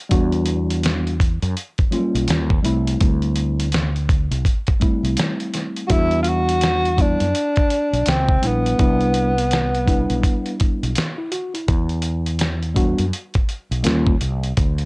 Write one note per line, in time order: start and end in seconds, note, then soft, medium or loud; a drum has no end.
0.09 1.38 E2 loud
0.09 1.13 G3 medium
0.09 1.14 B3 medium
0.09 1.14 D4 medium
0.09 1.15 F#4 medium
0.09 kick loud
0.09 closed hi-hat medium
0.32 closed hi-hat soft
0.46 closed hi-hat medium
0.70 closed hi-hat medium
0.83 snare loud
0.83 closed hi-hat medium
1.07 closed hi-hat soft
1.20 kick medium
1.20 closed hi-hat medium
1.42 1.54 F#2 medium
1.42 closed hi-hat soft
1.57 closed hi-hat medium
1.78 kick medium
1.78 closed hi-hat soft
1.91 2.00 F#3 medium
1.91 2.46 A#3 medium
1.91 2.47 C#4 medium
1.91 2.47 F4 medium
1.91 closed hi-hat medium
1.98 2.49 G3 medium
2.15 2.26 B1 medium
2.15 closed hi-hat medium
2.28 2.58 D#2 medium
2.28 snare loud
2.28 closed hi-hat medium
2.50 kick medium
2.63 2.95 C2 medium
2.63 3.67 G3 medium
2.63 3.67 A3 medium
2.63 3.67 C4 medium
2.63 3.68 E4 medium
2.63 closed hi-hat medium
2.87 closed hi-hat soft
3.01 4.28 D2 medium
3.01 kick loud
3.01 closed hi-hat medium
3.22 closed hi-hat soft
3.36 closed hi-hat medium
3.60 closed hi-hat medium
3.72 snare loud
3.72 closed hi-hat medium
3.96 closed hi-hat soft
4.09 kick medium
4.09 closed hi-hat medium
4.31 4.43 C2 medium
4.31 closed hi-hat soft
4.45 kick medium
4.45 closed hi-hat medium
4.67 kick medium
4.67 closed hi-hat soft
4.80 5.84 G3 medium
4.80 5.84 A3 medium
4.80 5.84 C4 medium
4.80 5.85 E4 medium
4.80 kick medium
4.80 closed hi-hat medium
5.03 5.15 C2 medium
5.03 closed hi-hat medium
5.17 snare loud
5.17 closed hi-hat medium
5.40 closed hi-hat soft
5.54 snare soft
5.54 closed hi-hat medium
5.76 closed hi-hat medium
5.87 7.17 E2 loud
5.87 6.92 G3 medium
5.87 6.92 B3 medium
5.87 6.92 D4 medium
5.87 5.93 F#4 medium
5.87 6.93 F#4 medium
5.87 kick loud
5.87 closed hi-hat medium
5.92 6.22 E4 loud
6.11 closed hi-hat soft
6.23 6.30 F4 medium
6.23 closed hi-hat medium
6.28 7.03 F#4 loud
6.49 closed hi-hat medium
6.61 snare medium
6.61 closed hi-hat medium
6.85 closed hi-hat soft
6.97 7.25 G3 medium
6.97 7.26 B3 medium
6.97 7.26 D4 medium
6.97 7.26 E4 medium
6.97 kick medium
6.97 closed hi-hat medium
7.01 8.11 D4 loud
7.20 7.32 F#2 medium
7.20 closed hi-hat soft
7.35 closed hi-hat medium
7.56 kick medium
7.56 closed hi-hat soft
7.70 closed hi-hat medium
7.93 8.04 B1 medium
7.93 closed hi-hat soft
8.06 8.37 C#2 medium
8.06 8.47 C4 medium
8.06 snare loud
8.06 closed hi-hat medium
8.29 kick loud
8.42 8.73 A#1 medium
8.42 8.77 G3 medium
8.42 8.78 B3 medium
8.42 8.78 D4 soft
8.42 8.79 E4 medium
8.42 closed hi-hat medium
8.46 10.61 B3 medium
8.66 closed hi-hat soft
8.78 10.06 C2 loud
8.78 9.33 G3 medium
8.78 9.33 B3 medium
8.78 9.33 D4 medium
8.78 9.34 E4 medium
8.78 kick loud
8.78 closed hi-hat medium
9.01 closed hi-hat soft
9.14 closed hi-hat medium
9.38 closed hi-hat medium
9.51 snare loud
9.51 closed hi-hat medium
9.75 closed hi-hat soft
9.86 10.90 G3 medium
9.86 10.90 B3 medium
9.86 10.90 D4 medium
9.86 10.91 E4 medium
9.86 kick medium
9.86 closed hi-hat medium
10.10 10.21 B1 medium
10.10 closed hi-hat medium
10.23 kick medium
10.23 closed hi-hat medium
10.46 closed hi-hat soft
10.60 kick medium
10.60 closed hi-hat medium
10.83 10.94 B1 medium
10.83 closed hi-hat soft
10.95 snare loud
10.95 closed hi-hat medium
11.18 11.31 E4 medium
11.32 11.53 F#4 medium
11.32 closed hi-hat medium
11.54 11.89 E4 medium
11.54 closed hi-hat soft
11.68 12.95 E2 loud
11.68 kick loud
11.68 closed hi-hat medium
11.89 closed hi-hat soft
12.02 closed hi-hat medium
12.26 closed hi-hat medium
12.39 snare medium
12.39 closed hi-hat medium
12.62 closed hi-hat soft
12.74 13.03 G3 medium
12.74 13.04 B3 medium
12.74 13.04 D4 medium
12.74 13.05 F#4 medium
12.74 kick medium
12.74 closed hi-hat medium
12.98 13.10 F#2 medium
12.98 closed hi-hat medium
13.13 closed hi-hat medium
13.34 kick medium
13.34 closed hi-hat soft
13.49 closed hi-hat medium
13.71 13.83 B1 medium
13.71 closed hi-hat medium
13.83 14.15 D#2 medium
13.83 14.12 G3 medium
13.83 14.12 A#3 medium
13.83 14.13 C#4 medium
13.83 14.13 F4 medium
13.83 snare medium
13.83 closed hi-hat medium
14.07 kick medium
14.21 14.51 C2 medium
14.21 closed hi-hat medium
14.44 closed hi-hat soft
14.57 14.85 D2 loud
14.57 kick loud
14.57 closed hi-hat medium
14.78 closed hi-hat soft